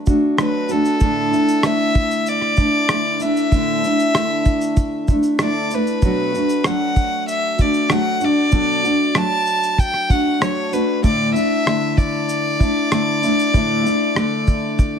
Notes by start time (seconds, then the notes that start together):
0.06 A3 D4 F#4, kick, shaker
0.37 F#3 A3 D4 F#4 B4, cross-stick, shaker
0.69 A3 D4 F#4 A4, shaker
0.85 shaker
1.00 A2 D3 A3 D4 E4, kick, shaker
1.31 A3 D4 E4, shaker
1.49 shaker
1.62 D3 A3 D4 E4 E5, cross-stick, shaker
1.95 kick, shaker
2.11 shaker
2.27 D5, shaker
2.41 cross-stick
2.56 A3 D4 E4, kick, shaker
2.89 D3 A3 D4 E4, cross-stick, shaker
3.20 A3 D4 E4 E5, shaker
3.37 shaker
3.52 A2 D3 A3 D4 E4, kick, shaker
3.83 A3 D4 E4, shaker
4.00 shaker
4.14 D3 A3 D4 E4, cross-stick, shaker
4.45 kick, shaker
4.61 shaker
4.77 kick, shaker
5.08 A3 D4 E4, kick, shaker
5.23 shaker
5.39 D3 A3 D4 E4 D5, cross-stick, shaker
5.71 D4 E4 B4, shaker
5.75 A3
5.87 shaker
6.02 B2 F#3 A3 D4 F#4, kick, shaker
6.34 A3 D4 F#4, shaker
6.49 shaker
6.64 F#3 A3 D4 F#5, cross-stick, shaker
6.69 F#4
6.96 kick, shaker
7.28 E5, shaker
7.58 A3 D4 F#4 D5, kick, shaker
7.74 shaker
7.89 F#3 A3 D4 F#4 F#5, cross-stick, shaker
8.20 A3 D4 F#4, shaker
8.24 D5
8.51 B2 F#3 A3 D4 F#4, kick, shaker
8.84 A3 D4 F#4, shaker
9.14 F#3 A3 D4 A5, cross-stick, shaker
9.47 shaker
9.63 shaker
9.78 G5, kick, shaker
9.94 cross-stick
10.09 A3 D4 F#4 F#5, kick, shaker
10.40 F#3 A3 D4 C#5, cross-stick, shaker
10.71 A3 D4 F#4 B4, shaker
11.02 A2 D3 A3 D4 E4 D5, kick, shaker
11.34 A3 D4 E4 E5, shaker
11.65 D3 A3 D4 E4, cross-stick, shaker
11.97 D5, kick, shaker
12.29 shaker
12.59 A3 D4 E4, kick, shaker
12.91 D3 A3 D4 E4, cross-stick, shaker
13.22 A3 D4 E4, shaker
13.39 shaker
13.53 A2 D3 A3 D4 E4, kick, shaker
13.83 A3 D4 E4, shaker
14.14 D3 A3 D4 E4, cross-stick, shaker
14.47 kick, shaker
14.79 kick, shaker